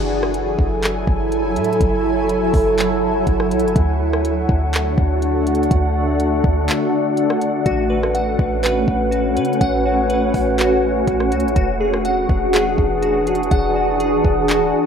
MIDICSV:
0, 0, Header, 1, 6, 480
1, 0, Start_track
1, 0, Key_signature, 3, "minor"
1, 0, Tempo, 487805
1, 1777, Time_signature, 4, 2, 24, 8
1, 14624, End_track
2, 0, Start_track
2, 0, Title_t, "Synth texture"
2, 0, Program_c, 0, 99
2, 0, Note_on_c, 0, 64, 90
2, 0, Note_on_c, 0, 69, 79
2, 0, Note_on_c, 0, 80, 96
2, 1757, Note_off_c, 0, 80, 0
2, 1776, Note_on_c, 0, 78, 97
2, 3657, Note_off_c, 0, 69, 0
2, 3658, Note_off_c, 0, 64, 0
2, 3696, Note_on_c, 0, 62, 87
2, 3696, Note_on_c, 0, 73, 79
2, 5597, Note_off_c, 0, 73, 0
2, 5618, Note_on_c, 0, 74, 80
2, 7498, Note_off_c, 0, 62, 0
2, 7518, Note_off_c, 0, 74, 0
2, 7537, Note_on_c, 0, 71, 77
2, 7538, Note_on_c, 0, 61, 88
2, 11339, Note_off_c, 0, 71, 0
2, 11340, Note_off_c, 0, 61, 0
2, 11377, Note_on_c, 0, 62, 85
2, 11378, Note_on_c, 0, 68, 79
2, 14624, Note_off_c, 0, 62, 0
2, 14624, Note_off_c, 0, 68, 0
2, 14624, Note_off_c, 0, 78, 0
2, 14624, End_track
3, 0, Start_track
3, 0, Title_t, "Synth keys"
3, 0, Program_c, 1, 88
3, 7537, Note_on_c, 1, 66, 108
3, 7771, Note_on_c, 1, 71, 84
3, 8016, Note_on_c, 1, 78, 90
3, 8482, Note_off_c, 1, 71, 0
3, 8493, Note_on_c, 1, 71, 98
3, 8956, Note_off_c, 1, 66, 0
3, 8968, Note_on_c, 1, 66, 85
3, 9205, Note_off_c, 1, 71, 0
3, 9217, Note_on_c, 1, 71, 94
3, 9443, Note_off_c, 1, 78, 0
3, 9455, Note_on_c, 1, 78, 114
3, 9686, Note_off_c, 1, 66, 0
3, 9697, Note_on_c, 1, 66, 80
3, 9922, Note_off_c, 1, 71, 0
3, 9934, Note_on_c, 1, 71, 90
3, 10402, Note_off_c, 1, 66, 0
3, 10414, Note_on_c, 1, 66, 103
3, 10896, Note_off_c, 1, 78, 0
3, 11123, Note_off_c, 1, 66, 0
3, 11135, Note_on_c, 1, 66, 85
3, 11364, Note_off_c, 1, 66, 0
3, 11376, Note_off_c, 1, 71, 0
3, 11376, Note_on_c, 1, 66, 104
3, 11616, Note_on_c, 1, 68, 89
3, 11861, Note_on_c, 1, 78, 98
3, 12326, Note_off_c, 1, 68, 0
3, 12338, Note_on_c, 1, 68, 99
3, 12803, Note_off_c, 1, 66, 0
3, 12815, Note_on_c, 1, 66, 95
3, 13050, Note_off_c, 1, 68, 0
3, 13062, Note_on_c, 1, 68, 83
3, 13283, Note_off_c, 1, 78, 0
3, 13295, Note_on_c, 1, 78, 115
3, 13525, Note_off_c, 1, 66, 0
3, 13537, Note_on_c, 1, 66, 88
3, 13763, Note_off_c, 1, 68, 0
3, 13775, Note_on_c, 1, 68, 90
3, 14245, Note_off_c, 1, 66, 0
3, 14257, Note_on_c, 1, 66, 100
3, 14624, Note_off_c, 1, 66, 0
3, 14624, Note_off_c, 1, 68, 0
3, 14624, Note_off_c, 1, 78, 0
3, 14624, End_track
4, 0, Start_track
4, 0, Title_t, "Ambient pad"
4, 0, Program_c, 2, 92
4, 0, Note_on_c, 2, 54, 82
4, 0, Note_on_c, 2, 64, 77
4, 0, Note_on_c, 2, 69, 91
4, 0, Note_on_c, 2, 80, 74
4, 3658, Note_off_c, 2, 54, 0
4, 3659, Note_off_c, 2, 64, 0
4, 3659, Note_off_c, 2, 69, 0
4, 3659, Note_off_c, 2, 80, 0
4, 3695, Note_on_c, 2, 66, 87
4, 3696, Note_on_c, 2, 50, 83
4, 3696, Note_on_c, 2, 57, 76
4, 3696, Note_on_c, 2, 62, 76
4, 7498, Note_off_c, 2, 50, 0
4, 7498, Note_off_c, 2, 62, 0
4, 7498, Note_off_c, 2, 66, 0
4, 7536, Note_on_c, 2, 66, 89
4, 7537, Note_on_c, 2, 61, 75
4, 11337, Note_off_c, 2, 57, 0
4, 11339, Note_off_c, 2, 61, 0
4, 11377, Note_on_c, 2, 52, 81
4, 11377, Note_on_c, 2, 62, 74
4, 11377, Note_on_c, 2, 68, 94
4, 14624, Note_off_c, 2, 52, 0
4, 14624, Note_off_c, 2, 62, 0
4, 14624, Note_off_c, 2, 66, 0
4, 14624, Note_off_c, 2, 68, 0
4, 14624, End_track
5, 0, Start_track
5, 0, Title_t, "808-style bass"
5, 0, Program_c, 3, 38
5, 0, Note_on_c, 3, 30, 112
5, 548, Note_off_c, 3, 30, 0
5, 578, Note_on_c, 3, 30, 105
5, 1038, Note_off_c, 3, 30, 0
5, 1057, Note_on_c, 3, 30, 107
5, 1538, Note_on_c, 3, 45, 106
5, 1553, Note_off_c, 3, 30, 0
5, 1766, Note_off_c, 3, 45, 0
5, 1777, Note_on_c, 3, 30, 112
5, 2468, Note_off_c, 3, 30, 0
5, 2497, Note_on_c, 3, 30, 104
5, 3189, Note_off_c, 3, 30, 0
5, 3217, Note_on_c, 3, 30, 107
5, 3457, Note_on_c, 3, 33, 102
5, 3472, Note_off_c, 3, 30, 0
5, 3577, Note_on_c, 3, 30, 102
5, 3592, Note_off_c, 3, 33, 0
5, 3691, Note_off_c, 3, 30, 0
5, 3698, Note_on_c, 3, 38, 120
5, 4389, Note_off_c, 3, 38, 0
5, 4418, Note_on_c, 3, 38, 109
5, 4879, Note_off_c, 3, 38, 0
5, 4898, Note_on_c, 3, 38, 110
5, 5589, Note_off_c, 3, 38, 0
5, 5618, Note_on_c, 3, 38, 120
5, 6309, Note_off_c, 3, 38, 0
5, 6338, Note_on_c, 3, 38, 108
5, 6578, Note_off_c, 3, 38, 0
5, 7537, Note_on_c, 3, 33, 113
5, 8228, Note_off_c, 3, 33, 0
5, 8256, Note_on_c, 3, 33, 110
5, 8717, Note_off_c, 3, 33, 0
5, 8735, Note_on_c, 3, 33, 107
5, 9217, Note_on_c, 3, 49, 104
5, 9231, Note_off_c, 3, 33, 0
5, 9445, Note_off_c, 3, 49, 0
5, 9456, Note_on_c, 3, 33, 115
5, 10148, Note_off_c, 3, 33, 0
5, 10177, Note_on_c, 3, 33, 108
5, 10869, Note_off_c, 3, 33, 0
5, 10899, Note_on_c, 3, 33, 113
5, 11137, Note_on_c, 3, 37, 102
5, 11152, Note_off_c, 3, 33, 0
5, 11256, Note_on_c, 3, 33, 97
5, 11271, Note_off_c, 3, 37, 0
5, 11371, Note_off_c, 3, 33, 0
5, 11377, Note_on_c, 3, 28, 117
5, 12068, Note_off_c, 3, 28, 0
5, 12096, Note_on_c, 3, 28, 105
5, 12558, Note_off_c, 3, 28, 0
5, 12577, Note_on_c, 3, 28, 109
5, 13268, Note_off_c, 3, 28, 0
5, 13297, Note_on_c, 3, 28, 116
5, 13988, Note_off_c, 3, 28, 0
5, 14018, Note_on_c, 3, 28, 113
5, 14376, Note_on_c, 3, 26, 101
5, 14391, Note_off_c, 3, 28, 0
5, 14491, Note_off_c, 3, 26, 0
5, 14624, End_track
6, 0, Start_track
6, 0, Title_t, "Drums"
6, 225, Note_on_c, 9, 37, 97
6, 323, Note_off_c, 9, 37, 0
6, 336, Note_on_c, 9, 42, 81
6, 435, Note_off_c, 9, 42, 0
6, 577, Note_on_c, 9, 36, 111
6, 676, Note_off_c, 9, 36, 0
6, 818, Note_on_c, 9, 42, 80
6, 826, Note_on_c, 9, 39, 125
6, 917, Note_off_c, 9, 42, 0
6, 924, Note_off_c, 9, 39, 0
6, 1057, Note_on_c, 9, 36, 98
6, 1155, Note_off_c, 9, 36, 0
6, 1299, Note_on_c, 9, 42, 60
6, 1397, Note_off_c, 9, 42, 0
6, 1538, Note_on_c, 9, 42, 74
6, 1618, Note_off_c, 9, 42, 0
6, 1618, Note_on_c, 9, 42, 62
6, 1699, Note_off_c, 9, 42, 0
6, 1699, Note_on_c, 9, 42, 44
6, 1777, Note_on_c, 9, 36, 116
6, 1778, Note_off_c, 9, 42, 0
6, 1778, Note_on_c, 9, 42, 76
6, 1876, Note_off_c, 9, 36, 0
6, 1876, Note_off_c, 9, 42, 0
6, 2257, Note_on_c, 9, 42, 78
6, 2355, Note_off_c, 9, 42, 0
6, 2496, Note_on_c, 9, 46, 62
6, 2497, Note_on_c, 9, 36, 116
6, 2594, Note_off_c, 9, 46, 0
6, 2596, Note_off_c, 9, 36, 0
6, 2739, Note_on_c, 9, 42, 81
6, 2746, Note_on_c, 9, 39, 123
6, 2837, Note_off_c, 9, 42, 0
6, 2844, Note_off_c, 9, 39, 0
6, 3216, Note_on_c, 9, 42, 61
6, 3218, Note_on_c, 9, 36, 95
6, 3315, Note_off_c, 9, 42, 0
6, 3316, Note_off_c, 9, 36, 0
6, 3345, Note_on_c, 9, 37, 94
6, 3443, Note_off_c, 9, 37, 0
6, 3458, Note_on_c, 9, 42, 76
6, 3538, Note_off_c, 9, 42, 0
6, 3538, Note_on_c, 9, 42, 60
6, 3618, Note_off_c, 9, 42, 0
6, 3618, Note_on_c, 9, 42, 45
6, 3698, Note_off_c, 9, 42, 0
6, 3698, Note_on_c, 9, 36, 114
6, 3698, Note_on_c, 9, 42, 75
6, 3796, Note_off_c, 9, 36, 0
6, 3796, Note_off_c, 9, 42, 0
6, 4067, Note_on_c, 9, 37, 101
6, 4166, Note_off_c, 9, 37, 0
6, 4180, Note_on_c, 9, 42, 79
6, 4278, Note_off_c, 9, 42, 0
6, 4418, Note_on_c, 9, 36, 114
6, 4517, Note_off_c, 9, 36, 0
6, 4661, Note_on_c, 9, 42, 84
6, 4668, Note_on_c, 9, 39, 127
6, 4759, Note_off_c, 9, 42, 0
6, 4766, Note_off_c, 9, 39, 0
6, 4898, Note_on_c, 9, 36, 99
6, 4996, Note_off_c, 9, 36, 0
6, 5139, Note_on_c, 9, 42, 61
6, 5237, Note_off_c, 9, 42, 0
6, 5380, Note_on_c, 9, 42, 78
6, 5460, Note_off_c, 9, 42, 0
6, 5460, Note_on_c, 9, 42, 57
6, 5540, Note_off_c, 9, 42, 0
6, 5540, Note_on_c, 9, 42, 45
6, 5618, Note_on_c, 9, 36, 112
6, 5619, Note_off_c, 9, 42, 0
6, 5619, Note_on_c, 9, 42, 76
6, 5717, Note_off_c, 9, 36, 0
6, 5717, Note_off_c, 9, 42, 0
6, 6098, Note_on_c, 9, 42, 77
6, 6197, Note_off_c, 9, 42, 0
6, 6338, Note_on_c, 9, 36, 111
6, 6436, Note_off_c, 9, 36, 0
6, 6579, Note_on_c, 9, 42, 82
6, 6587, Note_on_c, 9, 39, 126
6, 6678, Note_off_c, 9, 42, 0
6, 6685, Note_off_c, 9, 39, 0
6, 7057, Note_on_c, 9, 42, 64
6, 7156, Note_off_c, 9, 42, 0
6, 7185, Note_on_c, 9, 37, 95
6, 7283, Note_off_c, 9, 37, 0
6, 7296, Note_on_c, 9, 42, 73
6, 7395, Note_off_c, 9, 42, 0
6, 7536, Note_on_c, 9, 42, 77
6, 7537, Note_on_c, 9, 36, 120
6, 7634, Note_off_c, 9, 42, 0
6, 7635, Note_off_c, 9, 36, 0
6, 7905, Note_on_c, 9, 37, 95
6, 8003, Note_off_c, 9, 37, 0
6, 8017, Note_on_c, 9, 42, 77
6, 8115, Note_off_c, 9, 42, 0
6, 8257, Note_on_c, 9, 36, 110
6, 8355, Note_off_c, 9, 36, 0
6, 8498, Note_on_c, 9, 42, 84
6, 8506, Note_on_c, 9, 39, 127
6, 8597, Note_off_c, 9, 42, 0
6, 8604, Note_off_c, 9, 39, 0
6, 8736, Note_on_c, 9, 36, 102
6, 8834, Note_off_c, 9, 36, 0
6, 8977, Note_on_c, 9, 42, 65
6, 9075, Note_off_c, 9, 42, 0
6, 9217, Note_on_c, 9, 42, 75
6, 9297, Note_off_c, 9, 42, 0
6, 9297, Note_on_c, 9, 42, 61
6, 9377, Note_off_c, 9, 42, 0
6, 9377, Note_on_c, 9, 42, 44
6, 9456, Note_off_c, 9, 42, 0
6, 9456, Note_on_c, 9, 36, 119
6, 9456, Note_on_c, 9, 42, 74
6, 9554, Note_off_c, 9, 42, 0
6, 9555, Note_off_c, 9, 36, 0
6, 9937, Note_on_c, 9, 42, 77
6, 10035, Note_off_c, 9, 42, 0
6, 10175, Note_on_c, 9, 46, 60
6, 10177, Note_on_c, 9, 36, 112
6, 10274, Note_off_c, 9, 46, 0
6, 10275, Note_off_c, 9, 36, 0
6, 10418, Note_on_c, 9, 42, 85
6, 10426, Note_on_c, 9, 39, 124
6, 10517, Note_off_c, 9, 42, 0
6, 10524, Note_off_c, 9, 39, 0
6, 10898, Note_on_c, 9, 36, 99
6, 10898, Note_on_c, 9, 42, 60
6, 10996, Note_off_c, 9, 36, 0
6, 10996, Note_off_c, 9, 42, 0
6, 11024, Note_on_c, 9, 37, 95
6, 11122, Note_off_c, 9, 37, 0
6, 11138, Note_on_c, 9, 42, 76
6, 11217, Note_off_c, 9, 42, 0
6, 11217, Note_on_c, 9, 42, 62
6, 11297, Note_off_c, 9, 42, 0
6, 11297, Note_on_c, 9, 42, 47
6, 11376, Note_off_c, 9, 42, 0
6, 11376, Note_on_c, 9, 42, 76
6, 11377, Note_on_c, 9, 36, 118
6, 11474, Note_off_c, 9, 42, 0
6, 11475, Note_off_c, 9, 36, 0
6, 11745, Note_on_c, 9, 37, 96
6, 11843, Note_off_c, 9, 37, 0
6, 11856, Note_on_c, 9, 42, 82
6, 11955, Note_off_c, 9, 42, 0
6, 12097, Note_on_c, 9, 36, 111
6, 12195, Note_off_c, 9, 36, 0
6, 12337, Note_on_c, 9, 42, 79
6, 12345, Note_on_c, 9, 39, 127
6, 12436, Note_off_c, 9, 42, 0
6, 12443, Note_off_c, 9, 39, 0
6, 12577, Note_on_c, 9, 36, 98
6, 12675, Note_off_c, 9, 36, 0
6, 12817, Note_on_c, 9, 42, 62
6, 12915, Note_off_c, 9, 42, 0
6, 13057, Note_on_c, 9, 42, 76
6, 13137, Note_off_c, 9, 42, 0
6, 13137, Note_on_c, 9, 42, 57
6, 13217, Note_off_c, 9, 42, 0
6, 13217, Note_on_c, 9, 42, 45
6, 13296, Note_off_c, 9, 42, 0
6, 13296, Note_on_c, 9, 42, 76
6, 13297, Note_on_c, 9, 36, 115
6, 13395, Note_off_c, 9, 42, 0
6, 13396, Note_off_c, 9, 36, 0
6, 13777, Note_on_c, 9, 42, 78
6, 13875, Note_off_c, 9, 42, 0
6, 14017, Note_on_c, 9, 36, 116
6, 14116, Note_off_c, 9, 36, 0
6, 14258, Note_on_c, 9, 42, 81
6, 14265, Note_on_c, 9, 39, 127
6, 14356, Note_off_c, 9, 42, 0
6, 14364, Note_off_c, 9, 39, 0
6, 14624, End_track
0, 0, End_of_file